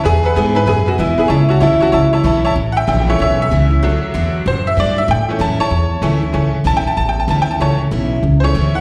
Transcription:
0.04 E2 G#4 B4 E5 G#5
0.23 B4 E5 F#5
0.34 G#2 D3 G#3 B3 E4 G#4 B4 E5 G#5
0.55 B3 E4 B4 E5 G#5
0.66 F#2 B2 G#4 B4 E5 G#5
0.86 F#4 B4 E5 G#5
0.98 E2 D3 G#3 B3 E4 B4 E5 G#5
1.18 B3 E4 G#4 B4 E5 G#5, muted upright bass stroke
1.28 C#2 A2 E4 C#5 E5 A5
1.49 F#4 C#5 E5 A5
1.60 D2 E3 A3 C#4 E4 C#5 E5 A5
1.80 C#4 E4 F#4 C#5 E5 A5, muted upright bass stroke
1.92 C#2 E2 E4 C#5 E5 A5
2.13 E4 C#5 E5 A5
2.24 B1 E3 A3 C#4 E4 C#5 E5 A5
2.44 C#4 E4 C#5 E5 A5
2.56 A1 A2
2.72 F#5
2.77 E5 G5
2.87 A#1 E3 A3 C#4 E4 E5 G5
3.07 E3 A3 C#4 E4 C#5 E5
3.19 B1 E2 C#5 E5
3.42 E5
3.51 C#2 E3 A3 C#4 E4
3.70 C#4 E4
3.83 D2 D3 F#3 A3 D4
4.14 E2 D3 A3 D4 F#4
4.46 F#2 A2 C5
4.67 E5
4.77 G2 D3 A3 D4 F#4 D5
4.97 D4 F#4 E5
5.08 A2 G5
5.29 E3 A3 C#4
5.39 F#2 E3 A3 C#4 E4 A5
5.59 C#4 E4 C#5 A5, muted upright bass stroke
5.71 E2
6.02 D2 E3 A3 C#4 E4
6.22 C#4 E4
6.33 C#2 A2 E3 A3 C#4
6.64 B1 E3 A3 C#4 E4 A5
6.77 G5
6.84 C#4 E4 A5, muted upright bass stroke
6.97 A1 E2 A5
7.09 G5
7.20 A5
7.28 D2 E3 A3 C#4 E4 A5
7.42 G5
7.48 C#4 E4 A5
7.60 C#2 A2 E3 A3 C#4 C#5 A5
7.91 B1 E3 A3 C#4 E4
8.23 C#2 E2
8.40 E3 A3 C#4 C5
8.44 C#5
8.55 D2 E3 A3 C#4 E4
8.74 C#4 E4 F#5

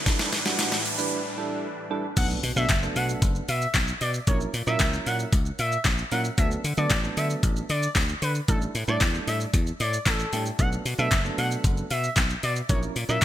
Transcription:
Already playing: B4, riser
0.06 A2 E3 G3 D4 E4 A4, kick, snare, closed hi-hat, tambourine, shaker
0.19 snare, shaker
0.33 snare, open hi-hat, tambourine, shaker
0.46 G3 D4 E4 F#4, snare, shaker
0.59 snare, closed hi-hat, tambourine, shaker
0.72 snare, shaker
0.85 open hi-hat, tambourine, shaker
0.98 G3 D4 E4 B4, shaker
1.38 G3 D4 E4 A4
1.90 G3 D4 E4 A4
2.17 B1 F#3 A3 B3 D4 A4 F#5, kick, closed hi-hat, crash, tambourine, impact, shaker
2.30 shaker
2.43 B2, open hi-hat, tambourine, shaker
2.56 B2 F#3 A3 B3 D4 A4 E5, shaker
2.69 F#1, kick, snare, clap, closed hi-hat, tambourine, shaker
2.82 F#3 A3 B3 D4 A4, shaker
2.96 B2 F#5, open hi-hat, tambourine, shaker
3.09 shaker
3.22 F#1, kick, closed hi-hat, tambourine, shaker
3.35 shaker
3.48 B2 E5, open hi-hat, tambourine, shaker
3.62 shaker
3.74 B1, kick, snare, clap, closed hi-hat, tambourine, shaker
3.88 shaker
4.01 B2 D5, open hi-hat, tambourine, shaker
4.14 shaker
4.27 A#1 F#3 A#3 C#4 E4 A#4 C#5, kick, closed hi-hat, shaker
4.41 shaker
4.54 A#2, open hi-hat, tambourine, shaker
4.67 A#2 F#3 A#3 C#4 E4 A#4 E5, shaker
4.79 C#2, kick, snare, clap, closed hi-hat, tambourine, shaker
4.93 shaker
5.06 A#2 F#5, open hi-hat, tambourine, shaker
5.19 shaker
5.33 C#2, kick, closed hi-hat, tambourine, shaker
5.46 shaker
5.59 A#2 E5, open hi-hat, tambourine, shaker
5.72 shaker
5.84 A#1, kick, snare, clap, closed hi-hat, tambourine, shaker
5.98 shaker
6.11 A#2 F#3 A#3 C#4 E4 A#4 F#5, open hi-hat, tambourine, shaker
6.25 shaker
6.38 D2 F#3 A3 B3 D4 A4 E5, kick, closed hi-hat, shaker
6.51 shaker
6.64 D3, open hi-hat, tambourine, shaker
6.77 D3 F#3 A3 B3 D4 A4 D5, shaker
6.90 A1, kick, snare, clap, closed hi-hat, tambourine, shaker
7.04 F#3 A3 B3 D4 A4, shaker
7.17 D3 E5, open hi-hat, tambourine, shaker
7.30 shaker
7.43 A1, kick, closed hi-hat, tambourine, shaker
7.56 shaker
7.69 D3 D5, open hi-hat, tambourine, shaker
7.83 shaker
7.95 D2, kick, snare, clap, closed hi-hat, tambourine, shaker
8.09 shaker
8.22 D3 B4, open hi-hat, tambourine, shaker
8.35 shaker
8.48 A1 G3 A3 D4 E4 A4, kick, closed hi-hat, shaker
8.62 shaker
8.75 A2, open hi-hat, tambourine, shaker
8.88 A2 G3 A3 D4 E4 A4 D5, shaker
9.00 E2, kick, snare, clap, closed hi-hat, tambourine, shaker
9.15 shaker
9.27 A2 E5, open hi-hat, tambourine, shaker
9.40 shaker
9.54 E2, kick, closed hi-hat, tambourine, shaker
9.67 shaker
9.80 A2 D5, open hi-hat, tambourine, shaker
9.93 shaker
10.06 A1 A4, kick, snare, clap, closed hi-hat, tambourine, shaker
10.19 shaker
10.32 A2 G3 A3 D4 E4 G4, open hi-hat, tambourine, shaker
10.46 shaker
10.59 B1 F#3 A3 B3 D4 A4 F#5, kick, closed hi-hat, shaker
10.72 shaker
10.85 B2, open hi-hat, tambourine, shaker
10.98 B2 F#3 A3 B3 D4 A4 E5, shaker
11.11 F#1, kick, snare, clap, closed hi-hat, tambourine, shaker
11.25 F#3 A3 B3 D4 A4, shaker
11.38 B2 F#5, open hi-hat, shaker
11.51 shaker
11.64 F#1, kick, closed hi-hat, tambourine, shaker
11.77 shaker
11.90 B2 E5, open hi-hat, tambourine, shaker
12.04 shaker
12.16 B1, kick, snare, clap, closed hi-hat, tambourine, shaker
12.30 shaker
12.43 B2 D5, open hi-hat, tambourine, shaker
12.56 shaker
12.69 A#1 F#3 A#3 C#4 E4 A#4 C#5, kick, closed hi-hat, tambourine, shaker
12.83 shaker
12.96 A#2, open hi-hat, tambourine, shaker
13.09 A#2 F#3 A#3 C#4 E4 A#4 E5, shaker
13.21 snare

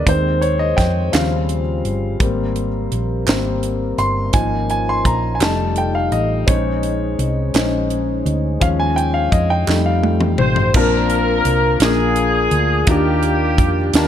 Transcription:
Already playing: G#4
0.07 D#2 D#3 G#3 C4 D#4 C5, kick, closed hi-hat
0.41 C#5, closed hi-hat
0.59 D#5
0.77 F2 G5, kick, snare, closed hi-hat
1.12 D#2 C#3 F3 G3 C4 F4 G4 F5, snare, clap, closed hi-hat
1.49 closed hi-hat
1.85 G1, closed hi-hat
2.20 G#1 G3 A#3 C4 A#4 C5, kick, closed hi-hat
2.56 closed hi-hat
2.92 A#1, closed hi-hat
3.26 G#1 G3 A#3 C4, snare, clap, closed hi-hat
3.63 closed hi-hat
3.98 G1 C6, closed hi-hat
4.33 G#1 F3 A#3 C#4 D#4 F4 G#5, kick, closed hi-hat
4.70 G#5, closed hi-hat
4.89 C6
5.05 A#1 A#5, kick, closed hi-hat
5.35 G#5
5.40 F1 G3 A3 D#4 F4 A4 D#5 A5, snare, clap, closed hi-hat
5.76 G5, closed hi-hat
5.95 F5
6.12 A1 D#5, closed hi-hat
6.47 A#1 G#3 C#4 D#4 G#4 C5 C#5, kick, closed hi-hat
6.83 closed hi-hat
7.19 C2, closed hi-hat
7.54 A#1 G#3 C#4 D#4 C5, snare, clap, closed hi-hat
7.90 closed hi-hat
8.26 D2, closed hi-hat
8.60 D#2 F3 G#3 C#4 F4 F5, kick, closed hi-hat
8.80 G#5
8.96 G5, closed hi-hat
9.14 F5
9.32 F2 D#5, kick, closed hi-hat
9.50 G5
9.67 F2 G3 A3 C4 D#4 A4, snare, clap
9.86 F5
10.03 high tom
10.21 mid tom
10.38 A1 C5, mid tom
10.56 floor tom
10.74 A#1 A#2 C4 D4 F4 A#4 A5, kick, crash
11.10 closed hi-hat
11.45 C2, closed hi-hat
11.80 A#1 A#2 A#3 D4 F4 G#4 A#4, snare, closed hi-hat
12.16 closed hi-hat
12.51 D2, closed hi-hat
12.87 D#2 D#3 A#3 D4 F4 F#4 G4 A#4, kick, closed hi-hat
12.95 G4
13.23 closed hi-hat
13.58 F2, kick, closed hi-hat
13.94 D#2 D#3 D4 F4 G4 A#4 A5, snare, closed hi-hat

